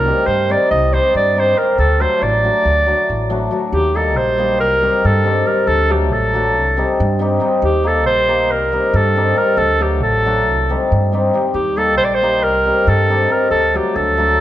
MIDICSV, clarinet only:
0, 0, Header, 1, 2, 480
1, 0, Start_track
1, 0, Tempo, 434153
1, 1960, Time_signature, 9, 3, 24, 8
1, 15926, End_track
2, 0, Start_track
2, 0, Title_t, "Clarinet"
2, 0, Program_c, 0, 71
2, 0, Note_on_c, 0, 70, 113
2, 293, Note_on_c, 0, 72, 93
2, 310, Note_off_c, 0, 70, 0
2, 565, Note_on_c, 0, 74, 94
2, 582, Note_off_c, 0, 72, 0
2, 775, Note_off_c, 0, 74, 0
2, 781, Note_on_c, 0, 75, 96
2, 1029, Note_on_c, 0, 72, 87
2, 1045, Note_off_c, 0, 75, 0
2, 1263, Note_off_c, 0, 72, 0
2, 1286, Note_on_c, 0, 74, 97
2, 1538, Note_on_c, 0, 72, 88
2, 1554, Note_off_c, 0, 74, 0
2, 1746, Note_on_c, 0, 70, 77
2, 1762, Note_off_c, 0, 72, 0
2, 1964, Note_off_c, 0, 70, 0
2, 1980, Note_on_c, 0, 69, 95
2, 2223, Note_on_c, 0, 72, 87
2, 2240, Note_off_c, 0, 69, 0
2, 2459, Note_on_c, 0, 74, 97
2, 2476, Note_off_c, 0, 72, 0
2, 3896, Note_off_c, 0, 74, 0
2, 4112, Note_on_c, 0, 67, 111
2, 4374, Note_on_c, 0, 69, 85
2, 4390, Note_off_c, 0, 67, 0
2, 4610, Note_on_c, 0, 72, 101
2, 4627, Note_off_c, 0, 69, 0
2, 5083, Note_off_c, 0, 72, 0
2, 5090, Note_on_c, 0, 70, 104
2, 5589, Note_on_c, 0, 69, 92
2, 5606, Note_off_c, 0, 70, 0
2, 6041, Note_on_c, 0, 70, 82
2, 6057, Note_off_c, 0, 69, 0
2, 6268, Note_on_c, 0, 69, 101
2, 6285, Note_off_c, 0, 70, 0
2, 6539, Note_on_c, 0, 67, 79
2, 6555, Note_off_c, 0, 69, 0
2, 6772, Note_on_c, 0, 69, 94
2, 6789, Note_off_c, 0, 67, 0
2, 7741, Note_off_c, 0, 69, 0
2, 8447, Note_on_c, 0, 67, 91
2, 8705, Note_on_c, 0, 69, 86
2, 8722, Note_off_c, 0, 67, 0
2, 8905, Note_off_c, 0, 69, 0
2, 8911, Note_on_c, 0, 72, 100
2, 9414, Note_on_c, 0, 70, 93
2, 9431, Note_off_c, 0, 72, 0
2, 9902, Note_on_c, 0, 69, 96
2, 9918, Note_off_c, 0, 70, 0
2, 10365, Note_on_c, 0, 70, 96
2, 10381, Note_off_c, 0, 69, 0
2, 10585, Note_on_c, 0, 69, 116
2, 10602, Note_off_c, 0, 70, 0
2, 10856, Note_on_c, 0, 67, 89
2, 10873, Note_off_c, 0, 69, 0
2, 11077, Note_off_c, 0, 67, 0
2, 11084, Note_on_c, 0, 69, 96
2, 12018, Note_off_c, 0, 69, 0
2, 12762, Note_on_c, 0, 67, 94
2, 13016, Note_on_c, 0, 69, 95
2, 13032, Note_off_c, 0, 67, 0
2, 13232, Note_off_c, 0, 69, 0
2, 13239, Note_on_c, 0, 72, 114
2, 13312, Note_on_c, 0, 74, 83
2, 13328, Note_off_c, 0, 72, 0
2, 13425, Note_on_c, 0, 72, 99
2, 13442, Note_off_c, 0, 74, 0
2, 13745, Note_on_c, 0, 70, 99
2, 13761, Note_off_c, 0, 72, 0
2, 14243, Note_on_c, 0, 69, 92
2, 14259, Note_off_c, 0, 70, 0
2, 14724, Note_on_c, 0, 70, 80
2, 14740, Note_off_c, 0, 69, 0
2, 14928, Note_off_c, 0, 70, 0
2, 14934, Note_on_c, 0, 69, 101
2, 15215, Note_on_c, 0, 67, 81
2, 15231, Note_off_c, 0, 69, 0
2, 15428, Note_on_c, 0, 69, 96
2, 15445, Note_off_c, 0, 67, 0
2, 15926, Note_off_c, 0, 69, 0
2, 15926, End_track
0, 0, End_of_file